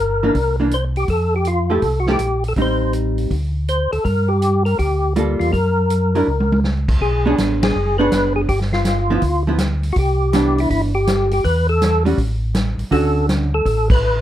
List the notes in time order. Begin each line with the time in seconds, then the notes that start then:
Already playing: G1 A#4
0.23 E3 A#3 D4
0.34 C2, kick, open hi-hat
0.60 E3 A#3 D4
0.71 C5, closed hi-hat
0.96 G4, open hi-hat
1.08 F2 A4, kick, open hi-hat
1.36 G4
1.45 F4, closed hi-hat
1.70 F3 A3 E4 G4 A4
1.82 C2, kick, open hi-hat
2.00 F#4
2.06 F3 A3 E4 G4, snare
2.11 G4
2.18 A#1, closed hi-hat
2.44 open hi-hat
2.48 A4
2.56 A1 G3 C4 D#4, kick, open hi-hat
2.62 C5
2.93 closed hi-hat
3.18 open hi-hat
3.30 D2, kick, open hi-hat
3.68 C5, closed hi-hat
3.92 D2 A4, open hi-hat
4.05 G2 A#4, kick, open hi-hat
4.28 G4
4.42 closed hi-hat
4.65 A#4, open hi-hat
4.78 D2 G4, kick, open hi-hat
5.16 G3 A#3 F4 A4, closed hi-hat
5.40 E2 F4, open hi-hat
5.53 F#2 A#4, kick, open hi-hat
5.90 closed hi-hat
6.15 F#3 D4 E4 A#4, open hi-hat
6.27 C#2
6.40 high tom
6.52 high tom
6.64 snare
6.88 kick, crash
7.01 B1 G#4, kick
7.26 B3 D4 G#4 C#5
7.38 A1, snare, closed hi-hat
7.63 G#4, snare, ride
7.75 F#1
7.98 B3 D4 G#4 B4 C#5
8.12 F#1, snare, closed hi-hat
8.36 G#4
8.49 G1 G4, kick, open hi-hat
8.61 snare
8.73 F4, snare
8.85 snare, closed hi-hat
9.10 F3 B3 E4
9.22 D2, kick, open hi-hat
9.47 F3 B3 E4
9.58 snare, closed hi-hat
9.83 open hi-hat
9.93 C2 F#4, kick, open hi-hat
9.99 G4
10.33 E3 B3 D4, snare, closed hi-hat
10.58 E4, open hi-hat
10.70 G1 E4, kick, open hi-hat
10.95 G4
11.07 snare, closed hi-hat
11.31 G4, open hi-hat
11.44 E2 B4, kick, open hi-hat
11.69 A4
11.82 snare, closed hi-hat
12.05 G3 C#4 F#4, open hi-hat
12.18 A1, kick, open hi-hat
12.55 snare, closed hi-hat
12.77 A1, open hi-hat
12.91 D2 D3 C#4 F#4 A4, kick, open hi-hat
13.29 snare, closed hi-hat
13.54 A4
13.65 A1, kick, open hi-hat
13.90 B4, kick, crash